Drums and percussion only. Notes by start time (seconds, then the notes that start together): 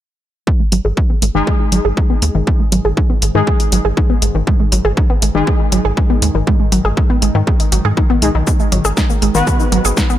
0.47 kick
0.72 closed hi-hat
0.97 kick
1.22 closed hi-hat
1.47 kick
1.72 closed hi-hat
1.97 kick
2.22 closed hi-hat
2.47 kick
2.72 closed hi-hat
2.97 kick
3.22 closed hi-hat
3.47 kick
3.60 closed hi-hat
3.72 closed hi-hat
3.97 kick
4.22 closed hi-hat
4.47 kick
4.72 closed hi-hat
4.97 kick
5.22 closed hi-hat
5.47 kick
5.72 closed hi-hat
5.97 kick
6.22 closed hi-hat
6.47 kick
6.72 closed hi-hat
6.97 kick
7.22 closed hi-hat
7.47 kick
7.60 closed hi-hat
7.72 closed hi-hat
7.97 kick
8.22 closed hi-hat
8.47 kick, shaker
8.60 shaker
8.72 closed hi-hat, mid tom
8.85 shaker
8.97 kick, snare, shaker
9.10 shaker
9.22 closed hi-hat
9.35 shaker
9.47 kick, mid tom, shaker
9.60 shaker
9.72 closed hi-hat
9.85 shaker
9.97 kick, snare, shaker
10.10 shaker